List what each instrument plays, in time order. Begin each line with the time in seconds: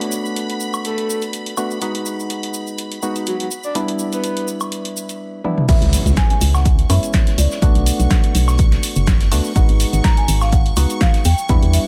Already playing: synth stab A3 B3 D4 F#4, string machine B5
0.01 closed hi-hat
0.12 shaker
0.25 shaker
0.36 closed hi-hat, shaker
0.50 closed hi-hat
0.60 shaker
0.73 high woodblock, shaker
0.85 soft synth lead A4, closed hi-hat, shaker
0.98 closed hi-hat
1.10 shaker
1.22 closed hi-hat, shaker
1.33 closed hi-hat, shaker
1.46 closed hi-hat
1.57 synth stab A3 B3 D4 F#4, high woodblock, shaker
1.71 shaker
1.81 synth stab G#3 B3 D#4 F#4, closed hi-hat, shaker
1.95 closed hi-hat
2.06 shaker
2.20 shaker
2.30 closed hi-hat, shaker
2.43 closed hi-hat
2.54 shaker
2.67 shaker
2.78 closed hi-hat, shaker
2.92 closed hi-hat
3.02 synth stab G#3 B3 D#4 F#4, shaker
3.16 closed hi-hat, shaker
3.26 soft synth lead F#4, closed hi-hat, shaker
3.40 soft synth lead F#4, closed hi-hat
3.51 shaker
3.63 soft synth lead D5, shaker
3.75 synth stab G3 B3 D4 E4, closed hi-hat, shaker
3.88 closed hi-hat
3.99 shaker
4.12 soft synth lead B4, closed hi-hat, shaker
4.24 closed hi-hat, shaker
4.37 closed hi-hat
4.48 shaker
4.60 high woodblock, shaker
4.72 closed hi-hat, shaker
4.85 closed hi-hat
4.97 shaker
5.09 closed hi-hat, shaker
5.44 synth stab G3 B3 D4 E4, high tom
5.58 mid tom
5.68 fm bass C#2, synth stab G#3 B3 C#4 E4, marimba E5, string machine C#6, kick, closed hi-hat, crash, impact, shaker
5.82 fm bass C#2, closed hi-hat
5.93 open hi-hat, shaker
6.06 fm bass C#2, closed hi-hat, shaker
6.16 marimba G#5, kick, snare, closed hi-hat, shaker
6.30 marimba G#5, closed hi-hat
6.41 fm bass C#2, open hi-hat, shaker
6.54 marimba F#5, snare, high woodblock, shaker
6.65 kick, closed hi-hat, shaker
6.79 closed hi-hat
6.89 fm bass F#2, synth stab G#3 B3 C#4 E4, marimba E5, open hi-hat, high woodblock, shaker
7.03 closed hi-hat, shaker
7.13 kick, snare, closed hi-hat, shaker
7.27 snare, closed hi-hat
7.38 fm bass C#2, marimba D5, open hi-hat, shaker
7.51 snare, shaker
7.62 fm bass B1, synth stab A3 B3 D4 F#4, kick, closed hi-hat, shaker
7.75 fm bass B1, closed hi-hat
7.86 open hi-hat, shaker
8.00 fm bass B1, closed hi-hat, shaker
8.10 kick, snare, closed hi-hat, shaker
8.24 closed hi-hat
8.35 fm bass B1, open hi-hat, shaker
8.47 snare, high woodblock, shaker
8.58 kick, closed hi-hat, shaker
8.72 snare, closed hi-hat
8.83 open hi-hat, shaker
8.96 fm bass F#1, closed hi-hat, shaker
9.07 kick, snare, closed hi-hat, shaker
9.20 snare, closed hi-hat
9.31 fm bass D2, synth stab A3 B3 D4 F#4, snare, open hi-hat, high woodblock, shaker
9.44 shaker
9.55 fm bass G#1, synth stab G#3 B3 D#4 F#4, marimba F#5, kick, closed hi-hat, shaker
9.69 fm bass G#1, closed hi-hat
9.80 open hi-hat, shaker
9.93 fm bass G#1, closed hi-hat, shaker
10.04 marimba A#5, kick, snare, closed hi-hat, shaker
10.17 marimba G#5, closed hi-hat
10.28 fm bass G#1, open hi-hat, shaker
10.41 marimba F5, snare, high woodblock, shaker
10.52 marimba F#5, kick, closed hi-hat, shaker
10.66 closed hi-hat
10.76 fm bass C#2, synth stab G#3 B3 D#4 F#4, open hi-hat, high woodblock, shaker
10.90 closed hi-hat, shaker
11.01 marimba F5, kick, snare, closed hi-hat, shaker
11.14 snare, closed hi-hat
11.25 fm bass E2, marimba G5, open hi-hat, shaker
11.38 shaker
11.49 fm bass E2, synth stab G3 B3 D4 E4, kick, closed hi-hat, shaker
11.62 fm bass E2, closed hi-hat
11.73 marimba E5, open hi-hat, shaker